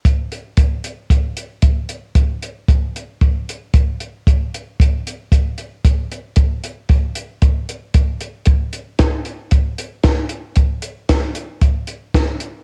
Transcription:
\new DrumStaff \with { instrumentName = "Drums" } \drummode { \time 4/4 \tempo 4 = 114 <hh bd>8 hh8 <hh bd>8 hh8 <hh bd>8 hh8 <hh bd>8 hh8 | <hh bd>8 hh8 <hh bd>8 hh8 <hh bd>8 hh8 <hh bd>8 hh8 | <hh bd>8 hh8 <hh bd>8 hh8 <hh bd>8 hh8 <hh bd>8 hh8 | <hh bd>8 hh8 <hh bd>8 hh8 <hh bd>8 hh8 <hh bd>8 hh8 |
<hh bd>8 hh8 <hh bd sn>8 hh8 <hh bd>8 hh8 <hh bd sn>8 hh8 | <hh bd>8 hh8 <hh bd sn>8 hh8 <hh bd>8 hh8 <hh bd sn>8 hh8 | }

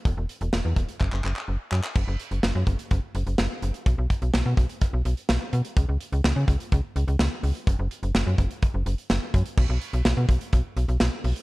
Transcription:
<<
  \new Staff \with { instrumentName = "FM bass" } { \clef bass \time 4/4 \key fis \mixolydian \tempo 4 = 126 e,,16 e,,16 r16 e,,16 e,,16 e,16 e,,16 r16 fis,,16 fis,,16 fis,,16 r16 fis,,16 r16 fis,16 r16 | fis,,16 fis,,16 r16 fis,,16 fis,,16 fis,16 fis,,16 r16 fis,,16 r16 fis,,16 fis,,16 fis,,16 r16 fis,,16 r16 | b,,16 b,,16 r16 b,,16 b,,16 b,16 b,,16 r8 b,,16 b,,16 r16 b,,16 r16 b,16 r16 | cis,16 cis,16 r16 cis,16 cis,16 cis16 cis,16 r16 cis,16 r16 cis,16 cis,16 cis,16 r16 cis,16 r16 |
fis,,16 fis,,16 r16 fis,,16 fis,,16 fis,16 fis,,16 r8 fis,,16 fis,,16 r16 fis,,16 r16 fis,16 r16 | b,,16 b,,16 r16 b,,16 b,,16 b,16 b,,16 r16 b,,16 r16 b,,16 b,,16 b,,16 r16 b,,16 r16 | }
  \new DrumStaff \with { instrumentName = "Drums" } \drummode { \time 4/4 <hh bd>8 hh16 hh16 sn8 <hh bd>16 hh16 <hc bd>16 hc16 hc16 hc16 r8 hc16 hc16 | <cymc bd>8 hh16 hh16 sn8 <hh bd>16 hh16 <hh bd>8 hh16 hh16 sn8 hh16 hh16 | <hh bd>8 <hh bd>16 hh16 sn8 <hh bd>16 hh16 <hh bd>8 hh16 hh16 sn8 hh16 hh16 | <hh bd>8 hh16 hh16 sn8 <hh bd>16 hh16 <hh bd>8 hh16 hh16 sn8 hho16 hh16 |
<hh bd>8 hh16 hh16 sn8 <hh bd>16 hh16 <hh bd>8 hh16 hh16 sn8 <hh bd>16 hh16 | <cymc bd>8 hh16 hh16 sn8 <hh bd>16 hh16 <hh bd>8 hh16 hh16 sn8 hho16 hh16 | }
>>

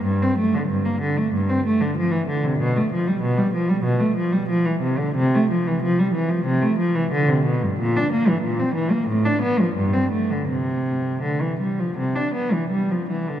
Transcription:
\new Staff \with { instrumentName = "Cello" } { \clef bass \time 4/4 \key g \dorian \tempo 4 = 92 g,16 c'16 a16 d16 g,16 bes16 d16 a16 g,16 c'16 a16 d16 f16 e16 d16 c16 | \key c \major b,16 a16 f16 g16 b,16 g16 f16 g16 b,16 a16 f16 g16 f16 e16 c16 d16 | c16 a16 f16 e16 f16 g16 e16 f16 c16 a16 f16 e16 d16 c16 b,16 g,16 | bes,16 d'16 bes16 e16 bes,16 c'16 e16 bes16 a,16 d'16 b16 f16 g,16 c'16 a16 d16 |
c4 d16 e16 g16 f16 c16 d'16 b16 e16 g16 f16 e16 d16 | }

